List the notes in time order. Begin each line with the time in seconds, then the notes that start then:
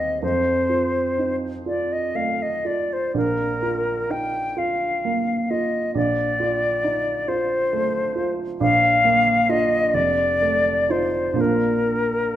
Already playing: D#2 G3 C4 G4 D#5
0.23 F2 C5
0.70 F4
1.18 D#4
1.66 F4 D5
1.93 D#5
2.15 A3 F5
2.42 D#5
2.65 F4 D5
2.93 C5
3.14 A#1 A#4
3.63 F4
4.10 D#4 G5
4.57 F4 F5
5.05 A#3
5.50 F4 D#5
5.95 A#1 D5
6.40 F4
6.84 D#4
7.28 F4 C5
7.73 A3
8.16 F4
8.60 A#1 F5
9.04 A#3
9.49 D4 F4 D#5
9.94 F1 D5
10.41 A3
10.89 D#4 F4 C5
11.33 A#1 A#3 D4
11.37 F4 A#4